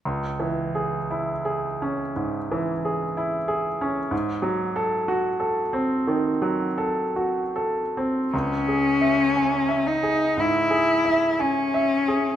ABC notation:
X:1
M:4/4
L:1/8
Q:1/4=59
K:C#m
V:1 name="Grand piano"
(3C,, E, G (3E G C (3G,, E, G (3E G C | (3G,, F, A (3F A ^B, (3D, F, A (3F A B, | (3C,, G e (3g e G (3G,, G e (3g e G |]
V:2 name="Cello"
z8 | z8 | C3 D E2 C2 |]